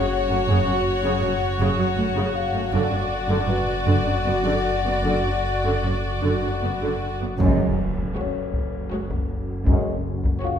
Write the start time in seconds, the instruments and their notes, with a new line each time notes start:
Already playing: synth drone F#1, violin section F#4 C#5, celesta A4 F5
0.13 celesta F#5
0.29 cello section F#2, viola section A3
0.47 double bass section F#1, cello section F#2, viola section C#3
0.66 cello section F#2, viola section F#3
1.03 cello section F#2, viola section C#3
1.21 double bass section F#1, cello section F#2, viola section F#3
1.59 double bass section F#1, cello section F#2, viola section C#3
1.79 cello section F#2, viola section F#3
1.97 double bass section F#1, cello section F#2, viola section A3
2.15 cello section F#2, viola section C#3
2.35 celesta F5
2.53 cello section F#2, viola section A3
2.72 double bass section F#1, synth drone F#1, cello section F#2, viola section D3, violin section F#4 D5
2.91 cello section F#2, viola section F#3
3.28 cello section F#2, viola section D3
3.47 double bass section F#1, cello section F#2, viola section F#3, celesta B4
3.86 double bass section F#1, cello section F#2, viola section D3
4.05 cello section F#2, viola section F#3
4.25 double bass section F#1, cello section F#2, viola section B3
4.44 cello section F#2, viola section D3
4.84 cello section F#2, viola section B3
5.03 double bass section F#1, cello section F#2, viola section D3
5.24 cello section F#2, viola section F#3
5.64 cello section F#2, viola section D3
5.83 double bass section F#1, cello section F#2, viola section F#3
6.22 double bass section F#1, cello section F#2, viola section D3
6.43 cello section F#2, viola section F#3
6.62 double bass section F#1, cello section F#2, viola section B3
6.82 cello section F#2, viola section D3
7.20 cello section F#2, viola section B3
7.38 synth drone F#1, double bass section F#1, trombone section F#2 F#3, cello section F#2, french horn section G#3 C#4, taiko, impact
7.97 taiko
8.15 viola section G#3, violin section F#4 C#5
8.20 celesta C#4 C#5
8.54 taiko
8.92 viola section G#3, violin section F#4 C#5
9.10 taiko
9.67 double bass section F#1, trombone section F#2 F#3, cello section F#2, french horn section G#3 C#4, taiko
10.24 taiko
10.42 viola section G#3, celesta F4 F5, violin section F#4 C#5